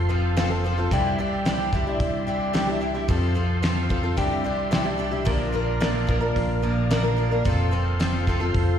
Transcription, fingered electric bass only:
0.00 0.87 F1 medium
0.91 1.96 C2 medium
2.00 3.05 C2 medium
3.09 4.14 F2 medium
4.17 5.23 C2 medium
5.27 6.32 A#1 medium
6.36 7.41 A#1 medium
7.45 8.50 F1 medium
8.55 8.79 F1 medium

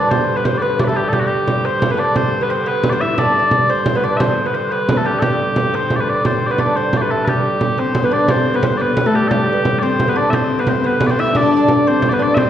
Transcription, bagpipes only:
0.00 0.11 D5 medium
0.11 0.36 C5 medium
0.36 0.45 B4 medium
0.45 0.58 C5 medium
0.58 0.80 B4 medium
0.58 0.62 D5 medium
0.80 0.84 D5 soft
0.84 0.96 A4 medium
0.84 0.88 B4 soft
0.96 1.08 G4 medium
1.08 1.13 A4 medium
1.13 1.20 G4 medium
1.20 1.27 F#4 medium
1.27 1.65 G4 medium
1.65 1.91 C5 medium
1.91 1.95 B4 medium
1.91 1.99 B4 medium
1.99 2.17 D5 medium
2.17 2.42 C5 loud
2.42 2.50 B4 medium
2.50 2.68 C5 medium
2.68 2.90 B4 loud
2.90 3.01 C5 medium
2.90 2.93 D5 medium
3.01 3.18 E5 loud
3.18 3.70 D5 medium
3.70 3.96 C5 medium
3.96 4.04 B4 medium
4.04 4.17 D5 medium
4.17 4.46 C5 medium
4.17 4.20 E5 medium
4.46 4.54 B4 medium
4.54 4.71 C5 medium
4.71 4.98 B4 loud
4.98 5.06 A4 medium
5.06 5.19 G4 medium
5.19 5.75 G4 medium
5.19 5.22 A4 medium
5.75 5.96 C5 medium
5.96 6.09 B4 medium
5.96 6.00 D5 medium
6.09 6.27 D5 medium
6.27 6.47 C5 medium
6.47 6.51 D5 medium
6.51 6.59 B4 medium
6.59 6.76 D5 medium
6.76 6.97 C5 medium
6.97 7.02 D5 medium
7.01 7.11 B4 medium
7.11 7.25 A4 medium
7.25 7.79 G4 medium
7.25 7.29 B4 medium
7.79 8.05 C5 medium
8.05 8.13 B4 medium
8.13 8.31 D5 medium
8.31 8.55 C5 medium
8.55 8.64 B4 medium
8.64 8.78 C5 medium
8.78 9.07 B4 medium
8.78 8.81 D5 medium
9.07 9.15 A4 medium
9.15 9.28 G4 medium
9.28 9.79 G4 medium
9.28 9.31 A4 medium
9.79 10.09 C5 loud
9.79 9.83 D5 loud
10.09 10.17 B4 medium
10.17 10.30 D5 medium
10.30 10.34 E5 loud
10.34 10.60 C5 loud
10.60 10.68 B4 medium
10.68 10.86 C5 medium
10.86 11.07 B4 loud
11.07 11.11 D5 loud
11.11 11.20 C5 loud
11.20 11.36 E5 loud
11.36 11.88 D5 loud
11.88 12.09 C5 loud
12.09 12.23 B4 medium
12.09 12.13 D5 medium
12.23 12.34 D5 loud
12.34 12.50 C5 loud
12.34 12.38 E5 loud

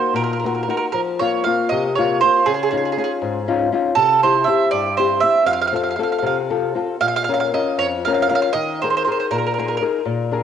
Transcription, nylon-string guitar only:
0.00 0.33 A#3 soft
0.00 0.33 D#4 soft
0.00 0.33 F#4 soft
0.14 0.65 A#2 medium
0.44 0.67 A#3 soft
0.44 0.67 D#4 soft
0.44 0.68 F#4 medium
0.68 0.88 A#3 soft
0.68 0.88 D#4 soft
0.68 0.88 F#4 medium
0.94 1.44 F3 medium
1.20 1.45 A#3 soft
1.20 1.45 C4 soft
1.20 1.45 F4 soft
1.46 1.87 A#3 medium
1.46 1.87 C4 soft
1.46 1.87 F4 medium
1.71 2.21 C3 medium
1.98 2.21 A#3 medium
1.98 2.22 C4 soft
1.98 2.22 F4 medium
2.22 2.41 A#3 medium
2.22 2.42 C4 soft
2.22 2.42 F4 soft
2.47 2.96 C#3 medium
2.72 2.96 C#4 soft
2.72 2.96 D#4 soft
2.72 2.97 F4 medium
2.97 3.38 C#4 soft
2.97 3.38 D#4 soft
2.97 3.39 F4 soft
3.22 3.71 G#2 medium
3.48 3.71 C#4 medium
3.48 3.71 D#4 medium
3.48 3.72 F4 medium
3.72 3.92 C#4 soft
3.72 3.92 D#4 soft
3.72 3.92 F4 medium
3.96 4.46 C3 medium
4.23 4.46 C4 medium
4.23 4.47 E4 soft
4.23 4.47 G4 medium
4.47 4.88 C4 soft
4.47 4.89 E4 soft
4.47 4.89 G4 soft
4.72 5.22 G2 medium
4.98 5.21 C4 medium
4.98 5.22 E4 soft
4.98 5.22 G4 medium
5.23 5.42 C4 soft
5.23 5.43 E4 soft
5.23 5.43 G4 soft
5.46 5.97 F2 medium
5.72 5.97 C4 soft
5.72 5.97 F4 soft
5.72 5.98 A4 medium
5.98 6.40 C4 soft
5.98 6.40 F4 soft
5.98 6.41 A4 medium
6.22 6.73 C3 medium
6.50 6.74 C4 soft
6.50 6.74 F4 soft
6.50 6.75 A4 medium
6.75 6.95 C4 soft
6.75 6.95 F4 soft
6.75 6.96 A4 soft
7.01 7.51 A#2 medium
7.29 7.53 C#4 soft
7.29 7.53 F4 soft
7.29 7.53 A#4 soft
7.54 7.95 C#4 soft
7.54 7.96 F4 soft
7.54 7.95 A#4 soft
7.78 8.28 F2 medium
8.07 8.29 C#4 medium
8.07 8.29 F4 soft
8.07 8.30 A#4 medium
8.30 8.50 C#4 soft
8.30 8.49 F4 soft
8.30 8.50 A#4 medium
8.54 9.04 D#3 medium
8.83 9.05 D#4 soft
8.83 9.06 G#4 soft
8.83 9.06 A#4 medium
9.06 9.47 D#4 soft
9.06 9.47 G#4 soft
9.06 9.47 A#4 medium
9.31 9.79 A#2 medium
9.58 9.80 D#4 soft
9.58 9.81 G#4 medium
9.58 9.81 A#4 medium
9.81 10.00 D#4 soft
9.81 10.00 G#4 soft
9.81 10.00 A#4 medium
10.05 10.43 A#2 medium
10.31 10.43 D4 medium
10.31 10.43 G#4 soft
10.31 10.43 A#4 medium

